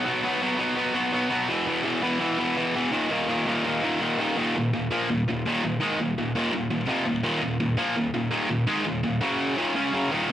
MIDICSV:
0, 0, Header, 1, 2, 480
1, 0, Start_track
1, 0, Tempo, 359066
1, 78, Time_signature, 4, 2, 24, 8
1, 13796, End_track
2, 0, Start_track
2, 0, Title_t, "Distorted electric guitar"
2, 0, Program_c, 0, 30
2, 0, Note_on_c, 0, 39, 87
2, 60, Note_on_c, 0, 47, 104
2, 64, Note_on_c, 0, 54, 108
2, 73, Note_on_c, 0, 59, 115
2, 300, Note_off_c, 0, 47, 0
2, 305, Note_off_c, 0, 54, 0
2, 316, Note_on_c, 0, 47, 82
2, 322, Note_off_c, 0, 59, 0
2, 322, Note_on_c, 0, 54, 86
2, 328, Note_on_c, 0, 59, 101
2, 536, Note_off_c, 0, 47, 0
2, 538, Note_off_c, 0, 54, 0
2, 552, Note_on_c, 0, 47, 86
2, 554, Note_on_c, 0, 54, 88
2, 558, Note_off_c, 0, 59, 0
2, 564, Note_on_c, 0, 59, 78
2, 762, Note_off_c, 0, 47, 0
2, 771, Note_off_c, 0, 54, 0
2, 778, Note_on_c, 0, 47, 97
2, 787, Note_on_c, 0, 54, 111
2, 789, Note_off_c, 0, 59, 0
2, 794, Note_on_c, 0, 59, 105
2, 1000, Note_off_c, 0, 47, 0
2, 1006, Note_off_c, 0, 59, 0
2, 1007, Note_off_c, 0, 54, 0
2, 1016, Note_on_c, 0, 47, 88
2, 1022, Note_on_c, 0, 59, 101
2, 1023, Note_on_c, 0, 54, 99
2, 1243, Note_off_c, 0, 47, 0
2, 1252, Note_off_c, 0, 54, 0
2, 1255, Note_off_c, 0, 59, 0
2, 1259, Note_on_c, 0, 47, 96
2, 1268, Note_on_c, 0, 54, 97
2, 1271, Note_on_c, 0, 59, 104
2, 1483, Note_off_c, 0, 47, 0
2, 1488, Note_off_c, 0, 54, 0
2, 1499, Note_off_c, 0, 59, 0
2, 1499, Note_on_c, 0, 47, 84
2, 1504, Note_on_c, 0, 54, 86
2, 1515, Note_on_c, 0, 59, 90
2, 1720, Note_off_c, 0, 47, 0
2, 1723, Note_off_c, 0, 54, 0
2, 1733, Note_off_c, 0, 59, 0
2, 1736, Note_on_c, 0, 47, 95
2, 1739, Note_on_c, 0, 54, 92
2, 1749, Note_on_c, 0, 59, 92
2, 1972, Note_off_c, 0, 47, 0
2, 1973, Note_off_c, 0, 54, 0
2, 1974, Note_off_c, 0, 39, 0
2, 1978, Note_off_c, 0, 59, 0
2, 1979, Note_on_c, 0, 40, 112
2, 1993, Note_on_c, 0, 47, 103
2, 1995, Note_on_c, 0, 52, 117
2, 2220, Note_off_c, 0, 40, 0
2, 2226, Note_off_c, 0, 47, 0
2, 2228, Note_off_c, 0, 52, 0
2, 2236, Note_on_c, 0, 40, 90
2, 2242, Note_on_c, 0, 47, 99
2, 2244, Note_on_c, 0, 52, 103
2, 2445, Note_off_c, 0, 40, 0
2, 2449, Note_off_c, 0, 47, 0
2, 2453, Note_off_c, 0, 52, 0
2, 2461, Note_on_c, 0, 40, 85
2, 2465, Note_on_c, 0, 47, 79
2, 2469, Note_on_c, 0, 52, 89
2, 2686, Note_off_c, 0, 40, 0
2, 2689, Note_off_c, 0, 47, 0
2, 2700, Note_off_c, 0, 52, 0
2, 2702, Note_on_c, 0, 40, 101
2, 2705, Note_on_c, 0, 47, 103
2, 2716, Note_on_c, 0, 52, 110
2, 2928, Note_off_c, 0, 40, 0
2, 2931, Note_off_c, 0, 47, 0
2, 2933, Note_off_c, 0, 52, 0
2, 2944, Note_on_c, 0, 40, 86
2, 2947, Note_on_c, 0, 47, 80
2, 2950, Note_on_c, 0, 52, 103
2, 3170, Note_off_c, 0, 40, 0
2, 3183, Note_off_c, 0, 47, 0
2, 3187, Note_on_c, 0, 40, 97
2, 3192, Note_off_c, 0, 52, 0
2, 3199, Note_on_c, 0, 47, 97
2, 3208, Note_on_c, 0, 52, 115
2, 3416, Note_off_c, 0, 40, 0
2, 3430, Note_off_c, 0, 47, 0
2, 3430, Note_off_c, 0, 52, 0
2, 3432, Note_on_c, 0, 40, 93
2, 3446, Note_on_c, 0, 47, 95
2, 3446, Note_on_c, 0, 52, 95
2, 3656, Note_off_c, 0, 40, 0
2, 3666, Note_off_c, 0, 47, 0
2, 3667, Note_off_c, 0, 52, 0
2, 3672, Note_on_c, 0, 40, 85
2, 3682, Note_on_c, 0, 47, 93
2, 3683, Note_on_c, 0, 52, 86
2, 3895, Note_off_c, 0, 40, 0
2, 3900, Note_on_c, 0, 39, 103
2, 3904, Note_off_c, 0, 47, 0
2, 3905, Note_off_c, 0, 52, 0
2, 3911, Note_on_c, 0, 46, 114
2, 3913, Note_on_c, 0, 51, 111
2, 4128, Note_off_c, 0, 39, 0
2, 4144, Note_off_c, 0, 46, 0
2, 4144, Note_on_c, 0, 39, 88
2, 4147, Note_off_c, 0, 51, 0
2, 4160, Note_on_c, 0, 46, 95
2, 4163, Note_on_c, 0, 51, 101
2, 4377, Note_off_c, 0, 39, 0
2, 4388, Note_off_c, 0, 51, 0
2, 4389, Note_off_c, 0, 46, 0
2, 4393, Note_on_c, 0, 39, 73
2, 4404, Note_on_c, 0, 51, 86
2, 4405, Note_on_c, 0, 46, 88
2, 4621, Note_off_c, 0, 39, 0
2, 4633, Note_off_c, 0, 46, 0
2, 4636, Note_off_c, 0, 51, 0
2, 4637, Note_on_c, 0, 39, 105
2, 4649, Note_on_c, 0, 46, 105
2, 4652, Note_on_c, 0, 51, 104
2, 4870, Note_off_c, 0, 39, 0
2, 4880, Note_off_c, 0, 46, 0
2, 4885, Note_off_c, 0, 51, 0
2, 4886, Note_on_c, 0, 39, 86
2, 4896, Note_on_c, 0, 46, 98
2, 4901, Note_on_c, 0, 51, 96
2, 5100, Note_off_c, 0, 39, 0
2, 5108, Note_off_c, 0, 46, 0
2, 5116, Note_on_c, 0, 39, 95
2, 5118, Note_off_c, 0, 51, 0
2, 5124, Note_on_c, 0, 46, 105
2, 5134, Note_on_c, 0, 51, 112
2, 5340, Note_off_c, 0, 39, 0
2, 5346, Note_off_c, 0, 46, 0
2, 5350, Note_off_c, 0, 51, 0
2, 5356, Note_on_c, 0, 39, 80
2, 5362, Note_on_c, 0, 46, 88
2, 5366, Note_on_c, 0, 51, 99
2, 5578, Note_off_c, 0, 39, 0
2, 5590, Note_off_c, 0, 46, 0
2, 5592, Note_off_c, 0, 51, 0
2, 5594, Note_on_c, 0, 39, 91
2, 5606, Note_on_c, 0, 46, 85
2, 5608, Note_on_c, 0, 51, 100
2, 5820, Note_off_c, 0, 39, 0
2, 5826, Note_off_c, 0, 46, 0
2, 5827, Note_off_c, 0, 51, 0
2, 5837, Note_on_c, 0, 39, 99
2, 5842, Note_on_c, 0, 46, 105
2, 5849, Note_on_c, 0, 51, 114
2, 6069, Note_off_c, 0, 39, 0
2, 6071, Note_off_c, 0, 46, 0
2, 6075, Note_off_c, 0, 51, 0
2, 6090, Note_on_c, 0, 39, 62
2, 6094, Note_on_c, 0, 46, 72
2, 6275, Note_off_c, 0, 39, 0
2, 6276, Note_off_c, 0, 46, 0
2, 6327, Note_on_c, 0, 39, 65
2, 6327, Note_on_c, 0, 46, 70
2, 6513, Note_off_c, 0, 39, 0
2, 6513, Note_off_c, 0, 46, 0
2, 6562, Note_on_c, 0, 46, 84
2, 6567, Note_on_c, 0, 53, 100
2, 6574, Note_on_c, 0, 58, 97
2, 6792, Note_off_c, 0, 46, 0
2, 6794, Note_off_c, 0, 53, 0
2, 6797, Note_off_c, 0, 58, 0
2, 6805, Note_on_c, 0, 39, 68
2, 6816, Note_on_c, 0, 46, 75
2, 6992, Note_off_c, 0, 39, 0
2, 6998, Note_off_c, 0, 46, 0
2, 7064, Note_on_c, 0, 39, 66
2, 7072, Note_on_c, 0, 46, 81
2, 7242, Note_off_c, 0, 39, 0
2, 7246, Note_off_c, 0, 46, 0
2, 7295, Note_on_c, 0, 39, 87
2, 7301, Note_on_c, 0, 46, 101
2, 7305, Note_on_c, 0, 51, 106
2, 7519, Note_off_c, 0, 39, 0
2, 7522, Note_off_c, 0, 46, 0
2, 7524, Note_off_c, 0, 51, 0
2, 7540, Note_on_c, 0, 39, 70
2, 7544, Note_on_c, 0, 46, 73
2, 7721, Note_off_c, 0, 39, 0
2, 7722, Note_off_c, 0, 46, 0
2, 7754, Note_on_c, 0, 44, 98
2, 7770, Note_on_c, 0, 51, 108
2, 7775, Note_on_c, 0, 56, 102
2, 7988, Note_off_c, 0, 44, 0
2, 7996, Note_off_c, 0, 51, 0
2, 7999, Note_off_c, 0, 56, 0
2, 8007, Note_on_c, 0, 39, 61
2, 8018, Note_on_c, 0, 46, 69
2, 8194, Note_off_c, 0, 39, 0
2, 8199, Note_off_c, 0, 46, 0
2, 8260, Note_on_c, 0, 39, 60
2, 8264, Note_on_c, 0, 46, 72
2, 8441, Note_off_c, 0, 39, 0
2, 8443, Note_off_c, 0, 46, 0
2, 8491, Note_on_c, 0, 39, 93
2, 8497, Note_on_c, 0, 46, 99
2, 8507, Note_on_c, 0, 51, 108
2, 8705, Note_off_c, 0, 39, 0
2, 8720, Note_off_c, 0, 46, 0
2, 8721, Note_on_c, 0, 39, 58
2, 8725, Note_off_c, 0, 51, 0
2, 8734, Note_on_c, 0, 46, 75
2, 8912, Note_off_c, 0, 39, 0
2, 8918, Note_off_c, 0, 46, 0
2, 8968, Note_on_c, 0, 39, 63
2, 8972, Note_on_c, 0, 46, 69
2, 9155, Note_off_c, 0, 39, 0
2, 9157, Note_off_c, 0, 46, 0
2, 9188, Note_on_c, 0, 41, 87
2, 9202, Note_on_c, 0, 48, 88
2, 9208, Note_on_c, 0, 53, 96
2, 9426, Note_off_c, 0, 41, 0
2, 9433, Note_off_c, 0, 48, 0
2, 9436, Note_off_c, 0, 53, 0
2, 9440, Note_on_c, 0, 39, 68
2, 9440, Note_on_c, 0, 46, 70
2, 9632, Note_off_c, 0, 39, 0
2, 9632, Note_off_c, 0, 46, 0
2, 9667, Note_on_c, 0, 39, 101
2, 9669, Note_on_c, 0, 46, 103
2, 9677, Note_on_c, 0, 51, 107
2, 9906, Note_off_c, 0, 39, 0
2, 9907, Note_off_c, 0, 46, 0
2, 9911, Note_off_c, 0, 51, 0
2, 9921, Note_on_c, 0, 39, 69
2, 9922, Note_on_c, 0, 46, 83
2, 10112, Note_off_c, 0, 39, 0
2, 10113, Note_off_c, 0, 46, 0
2, 10159, Note_on_c, 0, 39, 57
2, 10160, Note_on_c, 0, 46, 66
2, 10351, Note_off_c, 0, 39, 0
2, 10352, Note_off_c, 0, 46, 0
2, 10391, Note_on_c, 0, 46, 94
2, 10400, Note_on_c, 0, 53, 100
2, 10405, Note_on_c, 0, 58, 106
2, 10628, Note_off_c, 0, 46, 0
2, 10633, Note_off_c, 0, 53, 0
2, 10635, Note_off_c, 0, 58, 0
2, 10637, Note_on_c, 0, 39, 72
2, 10649, Note_on_c, 0, 46, 82
2, 10830, Note_off_c, 0, 39, 0
2, 10836, Note_off_c, 0, 46, 0
2, 10883, Note_on_c, 0, 39, 67
2, 10891, Note_on_c, 0, 46, 77
2, 11073, Note_off_c, 0, 39, 0
2, 11077, Note_off_c, 0, 46, 0
2, 11106, Note_on_c, 0, 39, 100
2, 11113, Note_on_c, 0, 46, 94
2, 11119, Note_on_c, 0, 51, 94
2, 11334, Note_off_c, 0, 39, 0
2, 11336, Note_off_c, 0, 46, 0
2, 11350, Note_on_c, 0, 39, 63
2, 11352, Note_off_c, 0, 51, 0
2, 11352, Note_on_c, 0, 46, 76
2, 11547, Note_off_c, 0, 39, 0
2, 11548, Note_off_c, 0, 46, 0
2, 11588, Note_on_c, 0, 44, 96
2, 11592, Note_on_c, 0, 51, 104
2, 11602, Note_on_c, 0, 56, 105
2, 11826, Note_off_c, 0, 44, 0
2, 11829, Note_off_c, 0, 51, 0
2, 11832, Note_on_c, 0, 39, 63
2, 11834, Note_off_c, 0, 56, 0
2, 11838, Note_on_c, 0, 46, 76
2, 12028, Note_off_c, 0, 39, 0
2, 12031, Note_off_c, 0, 46, 0
2, 12076, Note_on_c, 0, 39, 57
2, 12082, Note_on_c, 0, 46, 67
2, 12270, Note_off_c, 0, 39, 0
2, 12273, Note_off_c, 0, 46, 0
2, 12313, Note_on_c, 0, 42, 98
2, 12325, Note_on_c, 0, 49, 96
2, 12332, Note_on_c, 0, 54, 114
2, 12789, Note_off_c, 0, 42, 0
2, 12794, Note_off_c, 0, 49, 0
2, 12796, Note_on_c, 0, 39, 97
2, 12799, Note_off_c, 0, 54, 0
2, 12799, Note_on_c, 0, 46, 99
2, 12807, Note_on_c, 0, 51, 95
2, 13031, Note_off_c, 0, 39, 0
2, 13033, Note_off_c, 0, 46, 0
2, 13036, Note_off_c, 0, 51, 0
2, 13039, Note_on_c, 0, 49, 93
2, 13043, Note_on_c, 0, 56, 88
2, 13049, Note_on_c, 0, 61, 107
2, 13265, Note_off_c, 0, 49, 0
2, 13267, Note_on_c, 0, 42, 89
2, 13275, Note_off_c, 0, 56, 0
2, 13278, Note_off_c, 0, 61, 0
2, 13281, Note_on_c, 0, 49, 100
2, 13284, Note_on_c, 0, 54, 102
2, 13506, Note_off_c, 0, 42, 0
2, 13511, Note_on_c, 0, 39, 80
2, 13514, Note_off_c, 0, 49, 0
2, 13515, Note_off_c, 0, 54, 0
2, 13526, Note_on_c, 0, 46, 92
2, 13526, Note_on_c, 0, 51, 100
2, 13742, Note_off_c, 0, 39, 0
2, 13750, Note_off_c, 0, 46, 0
2, 13750, Note_off_c, 0, 51, 0
2, 13796, End_track
0, 0, End_of_file